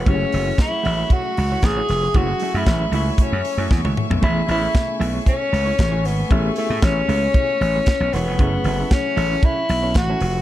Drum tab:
HH |x-o-x-o-x-o-x-o-|x-o-x-o-x-o-----|x-o-x-o-x-o-x-o-|x-o-x-o-x-o-x-o-|
SD |----o-------o-o-|----o-------o---|----o-------o-o-|----o-------o-o-|
T1 |----------------|-------------o--|----------------|----------------|
T2 |----------------|--------------o-|----------------|----------------|
FT |----------------|---------------o|----------------|----------------|
BD |o---o---o---o---|o---o---o---o---|o---o---o---o---|o---o---o---o---|

HH |x-o-x-o-x-o-x-o-|
SD |----o-------o---|
T1 |----------------|
T2 |----------------|
FT |----------------|
BD |o---o---o---o---|